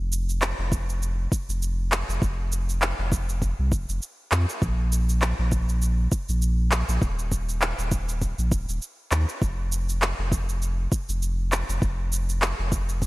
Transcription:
Already playing: sub bass F1
0.12 shaker
0.29 shaker
0.42 clap, shaker
0.59 sub bass F1
0.72 kick, shaker
0.89 shaker
1.03 shaker
1.32 kick, shaker
1.49 sub bass F1, shaker
1.62 shaker
1.92 clap, shaker
2.09 sub bass F1, shaker
2.22 sub bass F1, kick, shaker
2.52 shaker
2.69 shaker
2.82 clap, shaker
2.99 sub bass F1
3.12 kick, shaker
3.29 shaker
3.42 kick, shaker
3.59 sub bass C2
3.72 sub bass F1, kick, shaker
3.89 sub bass F1, shaker
4.02 shaker
4.32 sub bass F2, clap, shaker
4.49 shaker
4.62 sub bass A#1, kick, shaker
4.92 shaker
5.09 shaker
5.22 clap, shaker
5.39 sub bass A#1
5.52 kick, shaker
5.69 shaker
5.82 shaker
6.12 kick, shaker
6.29 sub bass A#1, shaker
6.42 shaker
6.72 clap, shaker
6.89 sub bass A#1, shaker
7.02 sub bass D#1, kick, shaker
7.19 shaker
7.32 kick, shaker
7.49 shaker
7.62 clap, shaker
7.79 sub bass D#1, shaker
7.92 kick, shaker
8.09 shaker
8.22 kick, shaker
8.38 sub bass A#1, shaker
8.52 sub bass D#1, kick, shaker
8.68 sub bass D#1, shaker
8.82 shaker
9.12 sub bass D#2, clap, shaker
9.29 shaker
9.42 sub bass F1, kick, shaker
9.72 shaker
9.89 shaker
10.02 clap, shaker
10.19 sub bass F1
10.32 kick, shaker
10.49 shaker
10.62 shaker
10.92 kick, shaker
11.09 sub bass F1, shaker
11.23 shaker
11.52 clap, shaker
11.69 sub bass F1, shaker
11.82 sub bass F1, kick, shaker
12.12 shaker
12.29 shaker
12.42 clap, shaker
12.59 sub bass F1
12.72 kick, shaker
12.89 shaker
13.02 kick, shaker

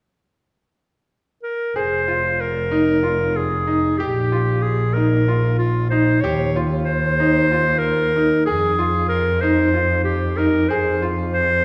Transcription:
1.43 clarinet A#4
1.76 double bass F1, grand piano G#4, clarinet C5
2.08 grand piano F4
2.41 clarinet A#4
2.71 grand piano D#4
3.03 grand piano F4
3.36 clarinet G#4
3.67 grand piano D#4
3.98 double bass A#1, clarinet G4, grand piano G4
4.32 grand piano F4
4.62 clarinet G#4
4.93 grand piano D#4, clarinet A#4
5.28 grand piano F4
5.58 clarinet F4
5.90 grand piano D#4, clarinet C5
6.21 double bass D#2, grand piano G4, clarinet C#5
6.56 grand piano F4
6.84 clarinet C5
7.20 grand piano D#4
7.52 grand piano F4
7.78 clarinet A#4
8.16 grand piano D#4
8.45 double bass F2, clarinet G#4, grand piano G#4
8.79 grand piano F4
9.09 clarinet A#4
9.41 grand piano D#4, clarinet C5
9.74 grand piano F4
10.04 clarinet G4
10.37 grand piano D#4, clarinet A#4
10.69 double bass F2, grand piano G#4, clarinet C5
11.02 grand piano F4
11.33 clarinet C5

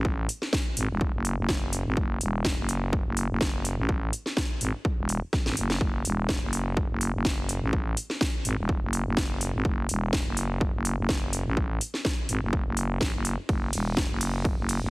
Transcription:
Already playing: fm bass A1
0.05 kick
0.29 open hi-hat
0.42 snare
0.53 kick, snare
0.77 fm bass G#1, open hi-hat
0.90 fm bass E1
1.01 kick
1.14 fm bass F#1
1.25 open hi-hat
1.38 fm bass F#1
1.49 kick, snare
1.73 open hi-hat
1.86 fm bass G#1
1.97 fm bass F#1, kick
2.21 fm bass E1, open hi-hat
2.45 kick, snare
2.58 fm bass F#1
2.69 open hi-hat
2.93 kick
3.06 fm bass F#1
3.17 open hi-hat
3.30 fm bass F#1
3.41 kick, snare
3.65 open hi-hat
3.78 fm bass A1
3.89 kick
4.13 open hi-hat
4.26 snare
4.37 kick, snare
4.61 fm bass G#1, open hi-hat
4.85 kick
4.98 fm bass E1
5.09 open hi-hat
5.33 kick, snare
5.46 fm bass G#1, snare
5.57 fm bass F#1, open hi-hat
5.70 snare
5.81 fm bass F#1, kick
6.05 fm bass E1, open hi-hat
6.29 kick, snare
6.42 fm bass F#1
6.53 open hi-hat
6.77 kick
6.90 fm bass F#1
7.01 open hi-hat
7.14 fm bass F#1
7.25 kick, snare
7.49 open hi-hat
7.62 fm bass A1
7.73 kick
7.97 open hi-hat
8.10 snare
8.21 kick, snare
8.45 fm bass G#1, open hi-hat
8.58 fm bass E1
8.69 kick
8.82 fm bass F#1
8.93 open hi-hat
9.06 fm bass F#1
9.17 kick, snare
9.41 open hi-hat
9.54 fm bass G#1
9.65 fm bass F#1, kick
9.89 fm bass E1, open hi-hat
10.13 kick, snare
10.26 fm bass F#1
10.37 open hi-hat
10.61 kick
10.74 fm bass F#1
10.85 open hi-hat
10.98 fm bass F#1
11.09 kick, snare
11.33 open hi-hat
11.46 fm bass A1
11.57 kick
11.81 open hi-hat
11.94 snare
12.05 kick, snare
12.29 fm bass G#1, open hi-hat
12.42 fm bass F#1
12.53 kick
12.66 fm bass F#1
12.77 open hi-hat
13.01 fm bass A1, kick, snare
13.14 fm bass F#1
13.25 open hi-hat
13.49 fm bass F#1, kick, ride
13.73 fm bass E1, open hi-hat, ride
13.97 kick, snare, ride
14.10 fm bass F#1
14.21 open hi-hat, ride
14.45 kick, ride
14.58 fm bass F#1
14.69 open hi-hat, ride
14.82 fm bass F#1

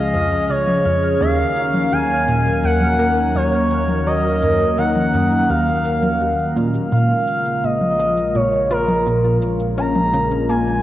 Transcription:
Already playing: synth drone C#2, analog synth pad C#3 F3 G#3 C#4 G#4, analog synth lead D#5, synth texture F6
0.13 synth arpeggio sound F2, cabasa
0.31 cabasa
0.49 synth arpeggio sound C#3, analog synth lead C#5, cabasa
0.67 high tom, cabasa
0.85 synth arpeggio sound F2, cabasa
1.03 cabasa
1.20 synth drone D#2, synth arpeggio sound D#2, analog synth pad D#3 F#3 A#3 A#4, analog synth lead F5, cabasa
1.38 cabasa
1.56 cabasa
1.74 high tom, cabasa
1.92 synth arpeggio sound D#2, analog synth lead G#5, cabasa
2.10 cabasa
2.28 synth arpeggio sound A#2, cabasa
2.45 cabasa
2.63 synth arpeggio sound D#2, analog synth lead F#5, cabasa
2.81 high tom, cabasa
2.99 synth arpeggio sound A#3, cabasa
3.17 cabasa
3.35 synth arpeggio sound D#2, analog synth lead C#5, cabasa
3.52 cabasa
3.70 cabasa
3.88 high tom, cabasa
4.06 synth arpeggio sound F#3, analog synth lead D#5, cabasa
4.24 cabasa
4.42 synth arpeggio sound F#2, cabasa
4.60 cabasa
4.77 synth arpeggio sound D#3, analog synth lead F#5, cabasa
4.95 high tom, cabasa
5.13 synth arpeggio sound F#2, cabasa
5.31 cabasa
5.49 synth arpeggio sound D#2, analog synth lead F5, cabasa
5.67 cabasa
5.85 cabasa
6.03 high tom, cabasa
6.20 synth arpeggio sound D#2, cabasa
6.39 cabasa
6.56 synth arpeggio sound A#2, cabasa
6.74 cabasa
6.92 synth drone A#1, synth arpeggio sound A#2, analog synth pad C#3 G#3 A#3 F4 A#4, analog synth lead F5, cabasa
7.10 cabasa
7.28 cabasa
7.45 cabasa
7.63 synth arpeggio sound A#2, analog synth lead D#5, cabasa
7.81 high tom, cabasa
7.99 synth arpeggio sound F3, cabasa
8.17 cabasa
8.35 synth arpeggio sound A#2, analog synth lead C#5, cabasa
8.53 cabasa
8.71 synth arpeggio sound F4, analog synth lead A#4, cabasa
8.88 high tom, cabasa
9.06 synth arpeggio sound A#2, cabasa
9.24 cabasa
9.42 cabasa
9.60 cabasa
9.78 synth arpeggio sound C#4, analog synth lead A#5, cabasa
9.96 high tom, cabasa
10.13 synth arpeggio sound C#3, cabasa
10.31 cabasa
10.48 synth arpeggio sound A#3, analog synth lead G#5, cabasa
10.67 cabasa

